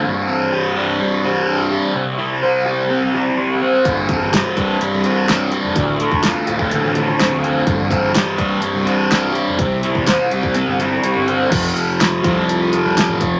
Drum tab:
CC |----------------|----------------|----------------|----------------|
HH |----------------|----------------|x-x-x-x-x-x-x-x-|x-x-x-x-x-x-x-x-|
SD |----------------|----------------|----o-------o---|----o-------o---|
BD |----------------|----------------|o-o---o---------|o--o---o--------|

CC |----------------|----------------|x---------------|
HH |x-x-x-x-x-x-x-x-|x-x-x-x-x-x-x-x-|x-x-x-x-x-x-x-x-|
SD |----o-------o---|----o-----------|----o-------o---|
BD |o-o---o---------|o--o---o--------|o-----o-------o-|